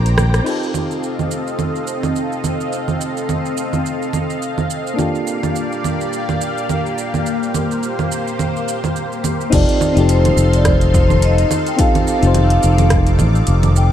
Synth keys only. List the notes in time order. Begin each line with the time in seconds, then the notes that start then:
Already playing: C4 D4 F4 G4 A#4 C5
0.42 C4 D#4 F4
0.48 G4 A4
4.94 A#3 D4 F4
5.00 G4 A4
9.50 C4 D#4 F4 G4
9.54 A4
9.92 C4 D#4
9.97 F4 G4 A4
11.77 C4 D#4 F4 G4 A4
12.19 C4 D#4 F4
12.25 G4 C5